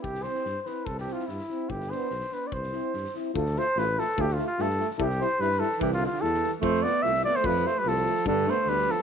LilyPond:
<<
  \new Staff \with { instrumentName = "Flugelhorn" } { \time 2/4 \key c \major \tempo 4 = 147 g'8 c''8.~ c''32 c''32 b'8 | \tuplet 3/2 { a'8 g'8 f'8 } e'4 | g'8 c''8~ \tuplet 3/2 { c''8. b'8 d''16 } | c''4. r8 |
a'8 c''8 b'8 a'8 | \tuplet 3/2 { g'8 f'8 f'8 } a'8. r32 a'32 | g'8 c''8 b'8 a'8 | \tuplet 3/2 { g'8 f'8 f'8 } a'8. r16 |
c''8 d''8 e''8 d''16 c''16 | b'8 c''16 b'16 a'4 | a'8 c''8 b'8 a'16 r16 | }
  \new Staff \with { instrumentName = "Euphonium" } { \time 2/4 \key c \major r8 e'8 r8 e'8 | r8 e'8 r8 e'8 | r8 d'8 r8 d'8 | r8 e'8 r8 e'8 |
f'8 f'8 f'8 f'8 | f'8 f'8 f'8 f'8 | e'8 e'8 e'8 e'8 | e'8 e'8 e'8 e'8 |
f'8 f'8 f'8 f'8 | f'8 f'8 f'8 f'8 | d'8 d'8 d'8 d'8 | }
  \new Staff \with { instrumentName = "Trombone" } { \time 2/4 \key c \major r8 c'8 r8 c'8 | r8 c'8 r8 c'8 | r8 b8 r8 b8 | r8 c'8 r8 c'8 |
a8 a8 a8 a8 | a8 a8 a8 a8 | g8 g8 g8 g8 | g8 g8 g8 g8 |
a8 a8 a8 a8 | a8 a8 a8 a8 | b8 b8 b8 b8 | }
  \new Staff \with { instrumentName = "Alto saxophone" } { \clef bass \time 2/4 \key c \major r2 | r2 | r2 | r2 |
r2 | r2 | r2 | \tuplet 3/2 { e8 d8 d8 } e8. r16 |
a8 b8 c'8 b16 a16 | f8 a16 g16 f4 | d8 a8 g8 f16 r16 | }
  \new Staff \with { instrumentName = "Tuba" } { \clef bass \time 2/4 \key c \major c,4 g,8 r8 | c,4 g,8 r8 | g,,4 b,,8 r8 | c,4 g,8 r8 |
d,4 a,,4 | d,4 g,4 | c,4 g,4 | c,4 e,4 |
f,4 c,4 | f,4 c,4 | g,4 d,4 | }
  \new DrumStaff \with { instrumentName = "Drums" } \drummode { \time 2/4 bd16 sn16 sn16 sn16 sn8 sn8 | bd16 sn16 sn16 sn16 sn16 sn16 sn8 | bd16 sn16 sn16 sn16 sn16 sn16 sn8 | bd16 sn16 sn8 sn16 sn16 sn8 |
bd16 sn16 sn8 sn8 sn16 sn16 | bd16 sn16 sn8 sn16 sn16 sn16 sn16 | bd16 sn16 sn8 sn16 sn16 sn16 sn16 | bd16 sn16 sn16 sn16 sn16 sn16 sn8 |
bd16 sn16 sn8 sn16 sn16 sn16 sn16 | bd16 sn16 sn8 sn16 sn16 sn16 sn16 | bd16 sn16 sn8 sn16 sn16 sn16 sn16 | }
>>